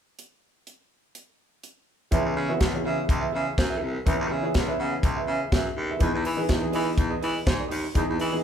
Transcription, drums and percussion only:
0.19 closed hi-hat
0.67 closed hi-hat
1.15 closed hi-hat
1.64 closed hi-hat
2.12 kick, closed hi-hat
2.61 kick, snare, closed hi-hat
3.09 kick, closed hi-hat
3.58 kick, snare, closed hi-hat
4.07 kick, closed hi-hat
4.54 kick, snare, closed hi-hat
5.03 kick, closed hi-hat
5.52 kick, snare, closed hi-hat
6.00 kick, closed hi-hat
6.25 open hi-hat
6.49 kick, snare, closed hi-hat
6.73 open hi-hat
6.98 kick, closed hi-hat
7.23 open hi-hat
7.47 kick, snare, closed hi-hat
7.71 open hi-hat
7.95 kick, closed hi-hat
8.20 open hi-hat

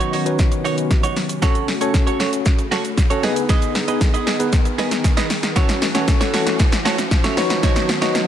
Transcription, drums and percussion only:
0.01 closed hi-hat, shaker
0.13 open hi-hat, shaker
0.26 closed hi-hat, shaker
0.39 kick, snare, shaker
0.52 closed hi-hat, shaker
0.65 open hi-hat, shaker
0.78 closed hi-hat, shaker
0.91 kick, snare, shaker
1.04 closed hi-hat, shaker
1.16 snare, open hi-hat, shaker
1.29 closed hi-hat, shaker
1.42 kick, snare, shaker
1.55 closed hi-hat, shaker
1.68 snare, open hi-hat, shaker
1.81 closed hi-hat, shaker
1.94 kick, snare, shaker
2.07 closed hi-hat, shaker
2.20 snare, open hi-hat, shaker
2.33 closed hi-hat, shaker
2.45 kick, snare, shaker
2.59 closed hi-hat, shaker
2.72 snare, open hi-hat, shaker
2.85 closed hi-hat, shaker
2.98 kick, snare, shaker
3.10 closed hi-hat, shaker
3.23 snare, open hi-hat, shaker
3.36 closed hi-hat, shaker
3.49 kick, snare, shaker
3.62 closed hi-hat, shaker
3.75 snare, open hi-hat, shaker
3.88 closed hi-hat, shaker
4.01 kick, snare, shaker
4.14 closed hi-hat, shaker
4.27 snare, open hi-hat, shaker
4.40 closed hi-hat, shaker
4.52 kick, snare, shaker
4.65 closed hi-hat, shaker
4.78 snare, open hi-hat, shaker
4.91 snare, closed hi-hat, shaker
5.04 kick, snare, shaker
5.17 snare, closed hi-hat, shaker
5.30 snare, open hi-hat, shaker
5.43 snare, closed hi-hat, shaker
5.56 kick, snare, shaker
5.69 snare, closed hi-hat, shaker
5.82 snare, open hi-hat, shaker
5.95 snare, closed hi-hat, shaker
6.08 kick, snare, shaker
6.21 snare, closed hi-hat, shaker
6.34 snare, open hi-hat, shaker
6.47 snare, closed hi-hat, shaker
6.59 kick, snare, shaker
6.72 snare, closed hi-hat, shaker
6.85 snare, open hi-hat, shaker
6.98 snare, closed hi-hat, shaker
7.11 kick, snare, shaker
7.24 snare, closed hi-hat, shaker
7.37 snare, open hi-hat, shaker
7.50 snare, closed hi-hat, shaker
7.63 kick, snare, shaker
7.76 snare, closed hi-hat, shaker
7.89 snare, open hi-hat, shaker
8.02 snare, closed hi-hat, shaker
8.15 snare, shaker

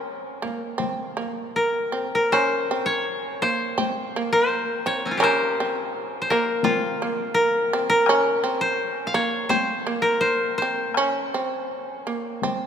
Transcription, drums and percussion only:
0.45 taiko high
0.80 taiko high
2.33 taiko rim
3.79 taiko high
5.23 taiko rim
6.63 taiko high
8.06 taiko rim
9.51 taiko high
10.95 taiko rim
12.42 taiko high

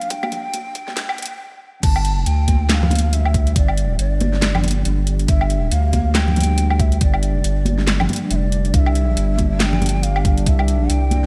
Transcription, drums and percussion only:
0.01 closed hi-hat
0.10 kick, closed hi-hat
0.23 high conga, low woodblock
0.32 closed hi-hat, low conga
0.54 closed hi-hat, high conga
0.75 kick, closed hi-hat
0.88 snare, high conga
0.97 snare, closed hi-hat
1.09 low woodblock
1.18 closed hi-hat, high conga
1.22 closed hi-hat
1.26 closed hi-hat
1.83 kick, closed hi-hat, crash
1.96 low woodblock
2.05 closed hi-hat
2.26 closed hi-hat
2.48 kick, closed hi-hat, high conga
2.69 snare, clap, closed hi-hat
2.83 low conga
2.91 closed hi-hat, high conga, low conga
2.95 closed hi-hat
2.99 closed hi-hat
3.13 closed hi-hat
3.25 low woodblock
3.34 kick, closed hi-hat
3.47 closed hi-hat
3.56 kick, closed hi-hat
3.68 low woodblock
3.78 closed hi-hat
3.99 closed hi-hat
4.21 closed hi-hat, high conga
4.33 snare
4.42 snare, clap, closed hi-hat
4.55 low conga, low woodblock
4.64 closed hi-hat, high conga, low conga
4.68 closed hi-hat
4.71 closed hi-hat
4.85 closed hi-hat
5.07 closed hi-hat
5.19 closed hi-hat
5.28 kick, closed hi-hat
5.41 low woodblock
5.50 closed hi-hat
5.72 closed hi-hat
5.93 kick, closed hi-hat, high conga
6.15 snare, clap, closed hi-hat
6.28 low conga
6.36 closed hi-hat, high conga, low conga
6.41 closed hi-hat
6.43 closed hi-hat
6.58 closed hi-hat
6.70 low woodblock
6.80 kick, closed hi-hat
6.92 closed hi-hat
7.01 kick, closed hi-hat
7.14 low woodblock
7.23 closed hi-hat
7.44 closed hi-hat
7.65 closed hi-hat, high conga
7.78 snare
7.87 snare, clap, closed hi-hat
8.00 low conga, low woodblock
8.09 closed hi-hat, high conga, low conga
8.13 closed hi-hat
8.16 closed hi-hat
8.31 closed hi-hat
8.52 closed hi-hat
8.65 closed hi-hat
8.74 kick, closed hi-hat
8.86 low woodblock
8.95 closed hi-hat
9.17 closed hi-hat
9.38 kick, closed hi-hat, high conga
9.60 snare, clap, closed hi-hat
9.73 low conga
9.81 closed hi-hat, high conga, low conga
9.86 closed hi-hat
9.89 closed hi-hat
10.03 closed hi-hat
10.16 low woodblock
10.25 kick, closed hi-hat
10.38 closed hi-hat
10.46 kick, closed hi-hat
10.59 low woodblock
10.68 closed hi-hat
10.90 closed hi-hat
11.11 closed hi-hat, high conga

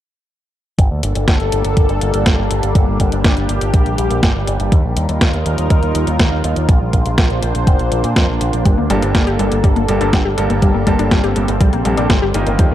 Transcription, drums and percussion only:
0.79 kick, closed hi-hat
1.03 closed hi-hat
1.15 closed hi-hat
1.28 kick, snare, closed hi-hat
1.40 closed hi-hat
1.52 closed hi-hat
1.65 closed hi-hat
1.77 kick, closed hi-hat
1.89 closed hi-hat
2.01 closed hi-hat
2.14 closed hi-hat
2.26 kick, snare, closed hi-hat
2.51 closed hi-hat
2.63 closed hi-hat
2.75 kick, closed hi-hat
3.00 kick, closed hi-hat
3.12 closed hi-hat
3.24 kick, snare, closed hi-hat
3.37 closed hi-hat
3.49 closed hi-hat
3.61 closed hi-hat
3.74 kick, closed hi-hat
3.86 closed hi-hat
3.98 closed hi-hat
4.11 closed hi-hat
4.23 kick, snare, closed hi-hat
4.47 closed hi-hat
4.60 closed hi-hat
4.72 kick, closed hi-hat
4.97 closed hi-hat
5.09 closed hi-hat
5.21 kick, snare, closed hi-hat
5.34 closed hi-hat
5.46 closed hi-hat
5.58 closed hi-hat
5.70 kick, closed hi-hat
5.83 closed hi-hat
5.95 closed hi-hat
6.07 closed hi-hat
6.19 kick, snare, closed hi-hat
6.44 closed hi-hat
6.56 closed hi-hat
6.69 kick, closed hi-hat
6.93 kick, closed hi-hat
7.06 closed hi-hat
7.18 kick, snare, closed hi-hat
7.30 closed hi-hat
7.43 closed hi-hat
7.55 closed hi-hat
7.67 kick, closed hi-hat
7.79 closed hi-hat
7.92 closed hi-hat
8.04 closed hi-hat
8.16 kick, snare, closed hi-hat
8.41 closed hi-hat
8.53 closed hi-hat
8.65 kick, closed hi-hat
8.90 closed hi-hat
9.02 closed hi-hat
9.15 kick, snare, closed hi-hat
9.27 closed hi-hat
9.39 closed hi-hat
9.52 closed hi-hat
9.64 kick, closed hi-hat
9.76 closed hi-hat
9.88 closed hi-hat
10.01 closed hi-hat
10.13 kick, snare, closed hi-hat
10.38 closed hi-hat
10.50 closed hi-hat
10.62 kick, closed hi-hat
10.87 kick, closed hi-hat
10.99 closed hi-hat
11.11 kick, snare, closed hi-hat
11.24 closed hi-hat
11.36 closed hi-hat
11.48 closed hi-hat
11.61 kick, closed hi-hat
11.73 closed hi-hat
11.85 closed hi-hat
11.97 closed hi-hat
12.10 kick, snare, closed hi-hat
12.34 closed hi-hat
12.47 closed hi-hat
12.59 kick, closed hi-hat

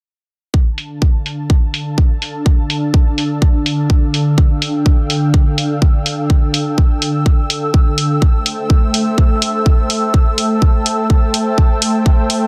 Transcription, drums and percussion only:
0.54 kick
0.78 open hi-hat
1.02 kick
1.26 open hi-hat
1.50 kick
1.74 open hi-hat
1.98 kick
2.22 open hi-hat
2.46 kick
2.70 open hi-hat
2.94 kick
3.18 open hi-hat
3.42 kick
3.66 open hi-hat
3.90 kick
4.14 open hi-hat
4.38 kick
4.62 open hi-hat
4.86 kick
5.10 open hi-hat
5.34 kick
5.58 open hi-hat
5.82 kick
6.06 open hi-hat
6.30 kick
6.54 open hi-hat
6.78 kick
7.02 open hi-hat
7.26 kick
7.50 open hi-hat
7.74 kick
7.98 open hi-hat
8.22 kick
8.46 open hi-hat
8.70 kick
8.94 open hi-hat
9.18 kick
9.42 open hi-hat
9.66 kick
9.90 open hi-hat
10.14 kick
10.38 open hi-hat
10.62 kick
10.86 open hi-hat
11.10 kick
11.34 open hi-hat
11.58 kick
11.82 open hi-hat
12.06 kick
12.30 open hi-hat

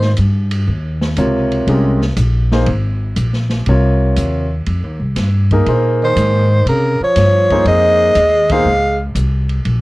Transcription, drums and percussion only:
0.01 snare
0.16 hi-hat pedal, ride
0.51 ride
1.01 snare
1.16 hi-hat pedal, ride
1.51 ride
1.67 ride
2.01 snare
2.16 hi-hat pedal, ride
2.52 snare
2.66 ride
3.16 hi-hat pedal, ride
3.33 snare
3.49 snare, ride
3.66 ride
4.16 hi-hat pedal, ride
4.66 ride
5.16 snare, hi-hat pedal, ride
5.51 kick, ride
5.66 ride
6.17 hi-hat pedal, ride
6.67 ride
7.16 snare, hi-hat pedal, ride
7.50 kick, ride
7.65 ride
8.15 hi-hat pedal, ride
8.49 kick, ride
9.15 hi-hat pedal, ride
9.49 ride
9.65 ride

